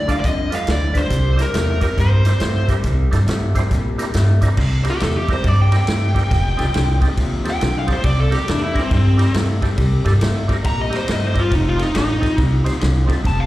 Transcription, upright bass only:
0, 0, Header, 1, 2, 480
1, 0, Start_track
1, 0, Tempo, 433526
1, 1227, Time_signature, 4, 2, 24, 8
1, 14906, End_track
2, 0, Start_track
2, 0, Title_t, "Upright bass"
2, 0, Program_c, 0, 32
2, 0, Note_on_c, 0, 38, 91
2, 123, Note_off_c, 0, 38, 0
2, 269, Note_on_c, 0, 41, 88
2, 595, Note_off_c, 0, 41, 0
2, 745, Note_on_c, 0, 38, 91
2, 1073, Note_off_c, 0, 38, 0
2, 1227, Note_on_c, 0, 36, 91
2, 1554, Note_off_c, 0, 36, 0
2, 1702, Note_on_c, 0, 40, 89
2, 2030, Note_off_c, 0, 40, 0
2, 2189, Note_on_c, 0, 43, 90
2, 2515, Note_off_c, 0, 43, 0
2, 2666, Note_on_c, 0, 43, 89
2, 2993, Note_off_c, 0, 43, 0
2, 3148, Note_on_c, 0, 36, 91
2, 3355, Note_off_c, 0, 36, 0
2, 3456, Note_on_c, 0, 43, 83
2, 3574, Note_off_c, 0, 43, 0
2, 3620, Note_on_c, 0, 43, 92
2, 3950, Note_off_c, 0, 43, 0
2, 4107, Note_on_c, 0, 46, 79
2, 4434, Note_off_c, 0, 46, 0
2, 4589, Note_on_c, 0, 43, 83
2, 4916, Note_off_c, 0, 43, 0
2, 5063, Note_on_c, 0, 36, 91
2, 5392, Note_off_c, 0, 36, 0
2, 5554, Note_on_c, 0, 40, 84
2, 5879, Note_off_c, 0, 40, 0
2, 6028, Note_on_c, 0, 43, 84
2, 6355, Note_off_c, 0, 43, 0
2, 6510, Note_on_c, 0, 43, 84
2, 6837, Note_off_c, 0, 43, 0
2, 6991, Note_on_c, 0, 29, 96
2, 7198, Note_off_c, 0, 29, 0
2, 7294, Note_on_c, 0, 36, 82
2, 7413, Note_off_c, 0, 36, 0
2, 7465, Note_on_c, 0, 36, 86
2, 7794, Note_off_c, 0, 36, 0
2, 7945, Note_on_c, 0, 39, 94
2, 8274, Note_off_c, 0, 39, 0
2, 8427, Note_on_c, 0, 35, 89
2, 8756, Note_off_c, 0, 35, 0
2, 8901, Note_on_c, 0, 36, 102
2, 9232, Note_off_c, 0, 36, 0
2, 9393, Note_on_c, 0, 40, 84
2, 9720, Note_off_c, 0, 40, 0
2, 9865, Note_on_c, 0, 43, 86
2, 10195, Note_off_c, 0, 43, 0
2, 10351, Note_on_c, 0, 43, 84
2, 10679, Note_off_c, 0, 43, 0
2, 10824, Note_on_c, 0, 36, 96
2, 11034, Note_off_c, 0, 36, 0
2, 11130, Note_on_c, 0, 43, 88
2, 11252, Note_off_c, 0, 43, 0
2, 11306, Note_on_c, 0, 43, 86
2, 11635, Note_off_c, 0, 43, 0
2, 11791, Note_on_c, 0, 46, 84
2, 12119, Note_off_c, 0, 46, 0
2, 12274, Note_on_c, 0, 43, 83
2, 12600, Note_off_c, 0, 43, 0
2, 12748, Note_on_c, 0, 29, 96
2, 13076, Note_off_c, 0, 29, 0
2, 13232, Note_on_c, 0, 33, 91
2, 13558, Note_off_c, 0, 33, 0
2, 13706, Note_on_c, 0, 36, 89
2, 14034, Note_off_c, 0, 36, 0
2, 14193, Note_on_c, 0, 36, 90
2, 14518, Note_off_c, 0, 36, 0
2, 14666, Note_on_c, 0, 29, 94
2, 14874, Note_off_c, 0, 29, 0
2, 14906, End_track
0, 0, End_of_file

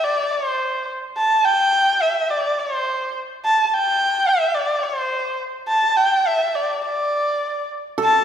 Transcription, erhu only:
0, 0, Header, 1, 2, 480
1, 0, Start_track
1, 0, Tempo, 566038
1, 990, Time_signature, 4, 2, 24, 8
1, 5305, Tempo, 578592
1, 6954, End_track
2, 0, Start_track
2, 0, Title_t, "Erhu"
2, 0, Program_c, 0, 110
2, 34, Note_on_c, 0, 74, 79
2, 271, Note_on_c, 0, 72, 69
2, 284, Note_off_c, 0, 74, 0
2, 753, Note_off_c, 0, 72, 0
2, 996, Note_on_c, 0, 81, 83
2, 1235, Note_on_c, 0, 79, 94
2, 1247, Note_off_c, 0, 81, 0
2, 1712, Note_on_c, 0, 76, 76
2, 1725, Note_off_c, 0, 79, 0
2, 1951, Note_on_c, 0, 74, 74
2, 1964, Note_off_c, 0, 76, 0
2, 2197, Note_on_c, 0, 72, 72
2, 2210, Note_off_c, 0, 74, 0
2, 2668, Note_off_c, 0, 72, 0
2, 2927, Note_on_c, 0, 81, 94
2, 3087, Note_off_c, 0, 81, 0
2, 3087, Note_on_c, 0, 81, 65
2, 3172, Note_on_c, 0, 79, 98
2, 3184, Note_off_c, 0, 81, 0
2, 3633, Note_on_c, 0, 76, 80
2, 3646, Note_off_c, 0, 79, 0
2, 3856, Note_on_c, 0, 74, 77
2, 3869, Note_off_c, 0, 76, 0
2, 4094, Note_on_c, 0, 72, 73
2, 4107, Note_off_c, 0, 74, 0
2, 4578, Note_off_c, 0, 72, 0
2, 4817, Note_on_c, 0, 81, 87
2, 5060, Note_on_c, 0, 79, 86
2, 5073, Note_off_c, 0, 81, 0
2, 5319, Note_on_c, 0, 76, 77
2, 5332, Note_off_c, 0, 79, 0
2, 5549, Note_on_c, 0, 74, 66
2, 5561, Note_off_c, 0, 76, 0
2, 5784, Note_off_c, 0, 74, 0
2, 5797, Note_on_c, 0, 74, 70
2, 6478, Note_off_c, 0, 74, 0
2, 6785, Note_on_c, 0, 81, 97
2, 6954, Note_off_c, 0, 81, 0
2, 6954, End_track
0, 0, End_of_file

